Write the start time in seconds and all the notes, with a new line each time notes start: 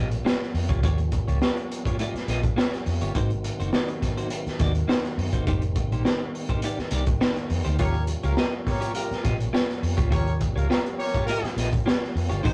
Already playing: A#1 F3 G3 A#3 C#4
0.11 muted clean electric guitar stroke, closed hi-hat
0.25 A#3 F4 G4 C#5, snare
0.42 snare
0.54 F2, muted clean electric guitar stroke, open hi-hat
0.69 C#2 A#3 F4 G4 C#5, kick, closed hi-hat
0.83 D#2 A#3 F4 G4 C#5, kick, closed hi-hat
0.98 closed hi-hat
1.12 muted clean electric guitar stroke, kick, closed hi-hat
1.28 C#2 A#3 F4 G4 C#5, closed hi-hat
1.42 A#3 F4 G4 C#5, snare
1.57 closed hi-hat
1.71 muted clean electric guitar stroke, closed hi-hat
1.85 A#3 F4 G4 C#5, kick, closed hi-hat
1.99 A#3 F4 G4 D#5, closed hi-hat
2.14 muted fingered electric bass stroke, muted clean electric guitar stroke, snare, closed hi-hat
2.28 A#1 A#3 F4 G4 D#5, snare, closed hi-hat
2.43 muted clean electric guitar stroke, kick, closed hi-hat
2.56 A#3 F4 G4 C#5, snare
2.73 snare, closed hi-hat
2.86 F2, muted clean electric guitar stroke, open hi-hat
3.01 G1 A#3 F4 G4 C#5, closed hi-hat
3.15 G#1 D#3 F#3 A#3 C4 D#4 F#4 C5, kick, closed hi-hat
3.30 closed hi-hat
3.44 muted clean electric guitar stroke, closed hi-hat
3.60 F#1 A#3 D#4 F#4 C5, closed hi-hat
3.73 A#3 D#4 F#4 D5, snare
3.88 closed hi-hat
4.02 muted clean electric guitar stroke, kick, snare, closed hi-hat
4.17 A#3 D#4 F#4 C5, closed hi-hat
4.30 muted clean electric guitar stroke, closed hi-hat
4.46 muted fingered electric bass stroke, snare, closed hi-hat
4.59 D#2 A#3 D#4 F#4 D5, kick, snare, closed hi-hat
4.75 closed hi-hat
4.88 A#3 D#4 F#4 C5, snare
5.05 snare, closed hi-hat
5.18 F#2, muted clean electric guitar stroke, open hi-hat
5.33 F#1 A#3 D#4 F#4 C5, kick, closed hi-hat
5.47 F1 G3 A#3 D#4 G4 C5, kick, closed hi-hat
5.62 closed hi-hat
5.76 muted clean electric guitar stroke, kick, closed hi-hat
5.91 A#1 A#3 D#4 G4 C5, closed hi-hat
6.05 A#3 D#4 G4 C5, snare
6.34 muted clean electric guitar stroke, open hi-hat
6.49 A#3 D#4 G4 C5, kick, closed hi-hat
6.62 A#3 D#4 G4 D5, closed hi-hat
6.78 muted fingered electric bass stroke, muted clean electric guitar stroke, snare
6.91 C2 A#3 D#4 G4 D5, closed hi-hat
7.06 kick, closed hi-hat
7.21 A#3 D#4 G4 C5, snare
7.36 snare, closed hi-hat
7.50 F2, muted clean electric guitar stroke, open hi-hat
7.65 D2 A#3 D#4 G4 C5, closed hi-hat
7.79 D#2 F3 A#3 C#4 F4 G4 A#4 C#5, kick, closed hi-hat
7.94 closed hi-hat
8.07 muted clean electric guitar stroke, closed hi-hat
8.23 C#2 A#3 F4 G4 A#4 C#5, closed hi-hat
8.37 A#3 F4 G4 A#4 D#5, snare
8.65 C#4 G4 A#4 C#5, muted clean electric guitar stroke, kick, snare, open hi-hat
8.81 A#3 F4 G4 C#5, closed hi-hat
8.94 A#3 F4 G4 A#4, muted clean electric guitar stroke, closed hi-hat
9.11 muted fingered electric bass stroke, snare, closed hi-hat
9.23 A#1 A#3 F4 G4 D#5, kick, snare, closed hi-hat
9.39 muted clean electric guitar stroke, closed hi-hat
9.53 A#3 F4 G4 C#5, snare
9.70 snare, closed hi-hat
9.82 F2, muted clean electric guitar stroke, open hi-hat
9.97 C#2 A#3 F4 G4 C#5, kick, closed hi-hat
10.10 D#2 A#3 C#4 F4 G4 A#4 C#5, kick, closed hi-hat
10.27 closed hi-hat
10.40 muted clean electric guitar stroke, kick, closed hi-hat
10.56 C#2 A#3 F4 G4 A#4 C#5, closed hi-hat
10.69 A#3 F4 G4 A#4 C#5, snare
10.86 closed hi-hat
10.97 C#4 G4 A#4 C#5, muted clean electric guitar stroke, open hi-hat
11.14 A#3 F4 G4 C#5, kick, closed hi-hat
11.26 A#3 F4 G4 A#4, closed hi-hat
11.30 D#5
11.43 muted fingered electric bass stroke, muted clean electric guitar stroke, snare, closed hi-hat
11.57 A#1 A#3 F4 G4 D#5, snare, closed hi-hat
11.72 muted clean electric guitar stroke, kick, closed hi-hat
11.86 A#3 F4 G4 C#5, snare
12.04 snare
12.15 F2, muted clean electric guitar stroke, open hi-hat
12.29 G1 A#3 F4 G4 C#5, closed hi-hat
12.42 G#1 D#3 F#3 A#3 C4 D#4 F#4 C5, kick, closed hi-hat